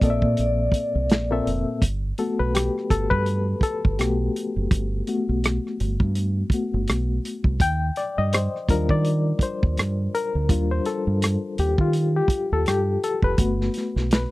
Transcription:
Already playing: reed electric piano A#2 A#3 C4 A4 D5
0.01 fingered electric bass A#1, reed electric piano A#2 A#3 C4 A4 D#5, vibraphone D5, kick, closed hi-hat
0.10 reed electric piano E5
0.22 fingered electric bass A#2, kick
0.37 fingered electric bass A#1, vibraphone D5, closed hi-hat
0.72 kick, closed hi-hat
0.95 fingered electric bass C2
1.10 fingered electric bass A#1, snare, closed hi-hat
1.31 reed electric piano A#2 A#3 C4 A4 E5
1.47 fingered electric bass F1, closed hi-hat
1.82 fingered electric bass G1, kick, closed hi-hat
2.18 reed electric piano A3 B3 F#4 A4, closed hi-hat
2.39 fingered electric bass B1, reed electric piano B4
2.55 reed electric piano G4, cross-stick, closed hi-hat
2.78 cross-stick
2.90 fingered electric bass G1, reed electric piano A4, kick, closed hi-hat
3.10 fingered electric bass G2, reed electric piano B4, kick
3.26 closed hi-hat
3.61 reed electric piano A4, muted fingered electric bass stroke, kick, closed hi-hat
3.85 fingered electric bass G1, kick
3.99 fingered electric bass B1, reed electric piano A3 B3 F#4 G4, cross-stick, closed hi-hat
4.36 closed hi-hat
4.56 fingered electric bass F#1
4.71 fingered electric bass G1, kick, closed hi-hat
5.07 reed electric piano A3 B3 F#4, closed hi-hat
5.29 fingered electric bass B1
5.44 cross-stick, closed hi-hat
5.67 cross-stick
5.80 fingered electric bass G1, closed hi-hat
6.00 fingered electric bass G2, kick
6.15 closed hi-hat
6.50 reed electric piano A3, muted fingered electric bass stroke, kick, closed hi-hat
6.54 reed electric piano B3 F#4
6.74 fingered electric bass G1
6.88 fingered electric bass B1, cross-stick, closed hi-hat
7.25 closed hi-hat
7.44 fingered electric bass C2, kick
7.60 fingered electric bass D#2, reed electric piano G5, kick, closed hi-hat
7.96 reed electric piano D5, cross-stick, closed hi-hat
8.18 fingered electric bass G2, reed electric piano D#5
8.33 reed electric piano C5, cross-stick, closed hi-hat
8.56 cross-stick
8.69 fingered electric bass D#2, reed electric piano G3 D4 F4 A#4, kick, closed hi-hat
8.89 fingered electric bass D#3, reed electric piano D5, kick
9.05 closed hi-hat
9.39 reed electric piano C5, muted fingered electric bass stroke, kick, closed hi-hat
9.63 fingered electric bass D#2, kick
9.77 fingered electric bass G2, cross-stick, closed hi-hat
10.15 reed electric piano A#4, closed hi-hat
10.35 fingered electric bass D2
10.49 fingered electric bass D#2, reed electric piano G3 D4 F4, kick, closed hi-hat
10.71 reed electric piano C5
10.85 reed electric piano A4, cross-stick, closed hi-hat
11.07 fingered electric bass G2
11.22 cross-stick, closed hi-hat
11.58 fingered electric bass D#2, reed electric piano G4, closed hi-hat
11.78 fingered electric bass D#3, reed electric piano F4, kick
11.93 closed hi-hat
12.16 reed electric piano G4
12.28 muted fingered electric bass stroke, kick, closed hi-hat
12.52 fingered electric bass D#2, reed electric piano A4
12.66 fingered electric bass G2, reed electric piano G4, cross-stick, closed hi-hat
13.04 reed electric piano A4, closed hi-hat
13.22 fingered electric bass F1, reed electric piano B4, kick
13.38 fingered electric bass G1, reed electric piano A3 B3 F#4, kick, closed hi-hat
13.61 snare
13.74 snare, closed hi-hat
13.96 fingered electric bass B1, snare
14.11 reed electric piano B4, snare, closed hi-hat

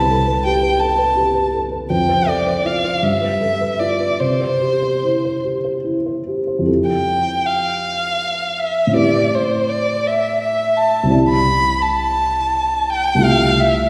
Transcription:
Already playing: grand piano C2 B4, violin A5
0.11 grand piano A4
0.27 grand piano B4
0.45 grand piano G4, violin G5
0.63 grand piano B4
0.80 violin A5
0.98 grand piano B4
1.16 grand piano G4
1.35 grand piano B4
1.53 grand piano A4
1.71 grand piano B4
1.90 grand piano F2, violin G5
2.09 grand piano C5
2.27 grand piano A4, violin D5
2.47 grand piano C5
2.65 grand piano F4, violin F5
2.84 grand piano C5
3.03 grand piano G2, violin E5
3.21 grand piano B4
3.41 grand piano A4
3.61 grand piano B4
3.79 grand piano F4, violin D5
4.00 grand piano B4
4.20 grand piano C3, violin C5
4.41 grand piano C5
4.62 grand piano G4
4.82 grand piano C5
5.04 grand piano E4
5.25 grand piano C5
5.45 grand piano G4
5.64 grand piano C5
5.84 grand piano E4
6.06 grand piano C5
6.27 grand piano G4
6.47 grand piano C5
6.59 grand piano F2 C4 E4
6.65 grand piano G4 A4
6.87 violin G5
7.46 violin F5
8.60 violin E5
8.87 grand piano A2 C4 E4
8.93 grand piano G4 B4, violin D5
9.35 violin C5
9.70 violin D5
10.07 violin E5
10.40 violin E5
10.77 violin A5
11.03 grand piano C2 C4 E4
11.09 grand piano G4 D5
11.29 violin B5
11.82 violin A5
12.90 violin G5
13.15 grand piano C2 A3 F4
13.21 grand piano G4 E5, violin F5
13.60 violin E5

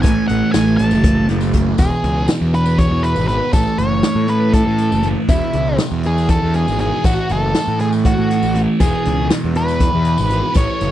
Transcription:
0.02 picked electric bass A1, distorted electric guitar A2 E3 A3, lead electric guitar G#5, kick, closed hi-hat, tambourine
0.28 picked electric bass A1, lead electric guitar F#5, closed hi-hat, tambourine
0.52 picked electric bass A1, lead electric guitar G#5, snare, closed hi-hat, tambourine
0.67 tambourine
0.77 picked electric bass A1, lead electric guitar A5, closed hi-hat, tambourine
0.91 picked electric bass F#1, tambourine
1.03 kick, closed hi-hat, tambourine
1.28 picked electric bass F#1, distorted electric guitar A2 E3 A3, snare, closed hi-hat
1.41 tambourine
1.53 distorted electric guitar A2 E3 A3, kick, closed hi-hat, tambourine
1.78 picked electric bass E1, distorted electric guitar E2 B2 E3, lead electric guitar G#4, kick, closed hi-hat, tambourine
2.04 picked electric bass C#2, closed hi-hat
2.28 snare, closed hi-hat, tambourine
2.41 picked electric bass E2
2.54 distorted electric guitar E2 B2 E3, lead electric guitar B4, closed hi-hat
2.66 tambourine
2.78 lead electric guitar C#5, kick, closed hi-hat
2.91 picked electric bass E2
3.03 lead electric guitar B4, closed hi-hat
3.16 picked electric bass G#1, tambourine
3.28 distorted electric guitar E2 B2 E3, lead electric guitar B4, closed hi-hat
3.53 picked electric bass A1, distorted electric guitar A2 E3 A3, lead electric guitar A4, kick, closed hi-hat, tambourine
3.78 picked electric bass F#1, lead electric guitar C#5, closed hi-hat
4.03 snare, closed hi-hat, tambourine
4.15 picked electric bass A2
4.28 distorted electric guitar A2 E3 A3, lead electric guitar B4, closed hi-hat
4.53 lead electric guitar A4, kick, closed hi-hat
4.67 picked electric bass A2
4.78 closed hi-hat
4.92 picked electric bass F#1, tambourine
5.03 distorted electric guitar A2 E3 A3, closed hi-hat
5.28 picked electric bass E1, distorted electric guitar E2 B2 E3, lead electric guitar E4, kick, closed hi-hat, tambourine
5.53 picked electric bass C#2, closed hi-hat
5.78 snare, closed hi-hat, tambourine
5.92 picked electric bass E2
6.03 distorted electric guitar E2 B2 E3, lead electric guitar G#4, closed hi-hat
6.18 tambourine
6.29 lead electric guitar A4, kick, snare, closed hi-hat
6.42 picked electric bass E2
6.54 lead electric guitar G#4, closed hi-hat
6.68 picked electric bass G#1, tambourine
6.79 distorted electric guitar E2 B2 E3, lead electric guitar G#4, closed hi-hat
7.03 picked electric bass A1, distorted electric guitar A2 E3 A3, lead electric guitar F#4, kick, closed hi-hat, tambourine
7.29 picked electric bass F#1, lead electric guitar A4, closed hi-hat, tambourine
7.54 snare, closed hi-hat, tambourine
7.68 picked electric bass A2
7.79 distorted electric guitar A2 E3 A3, lead electric guitar G#4, closed hi-hat, tambourine
7.93 tambourine
8.05 lead electric guitar F#4, kick, snare, closed hi-hat, tambourine
8.17 picked electric bass A2, tambourine
8.31 snare, closed hi-hat
8.43 picked electric bass A1, tambourine
8.55 distorted electric guitar A2 E3 A3, closed hi-hat, tambourine
8.80 picked electric bass E1, distorted electric guitar E2 B2 E3, lead electric guitar G#4, kick, closed hi-hat, tambourine
9.05 picked electric bass C#2, closed hi-hat
9.30 snare, closed hi-hat, tambourine
9.44 picked electric bass E2
9.55 distorted electric guitar E2 B2 E3, lead electric guitar B4, closed hi-hat
9.68 tambourine
9.80 kick, closed hi-hat
9.94 picked electric bass E2
10.05 closed hi-hat
10.18 picked electric bass G#1, tambourine
10.30 distorted electric guitar E2 B2 E3, closed hi-hat
10.54 picked electric bass A1, distorted electric guitar A2 E3 A3, lead electric guitar C#5, kick, closed hi-hat, tambourine
10.81 picked electric bass F#1, snare, closed hi-hat

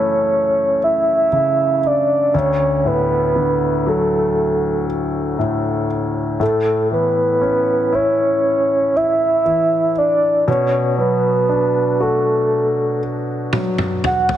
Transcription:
Already playing: grand piano F#2 C#3 E3 A3, soft synth lead C#5
0.84 soft synth lead E5
1.32 grand piano C#3
1.86 soft synth lead D5
2.34 grand piano D2, soft synth lead C#5
2.85 grand piano A2, soft synth lead B4
3.36 grand piano D3
3.86 grand piano F#3, soft synth lead A4
5.39 grand piano A2
6.40 grand piano A2, soft synth lead A4
6.91 grand piano E3, soft synth lead B4
7.41 grand piano C#4
7.92 grand piano E4, soft synth lead C#5
8.96 soft synth lead E5
9.45 grand piano E3
9.98 soft synth lead D5
10.47 grand piano B2, soft synth lead C#5
10.98 grand piano F#3, soft synth lead B4
11.49 grand piano D4
12.00 grand piano F#4, soft synth lead A4
13.53 grand piano F#3, high tom
13.78 mid tom
14.04 soft synth lead F#5, mid tom
14.29 floor tom

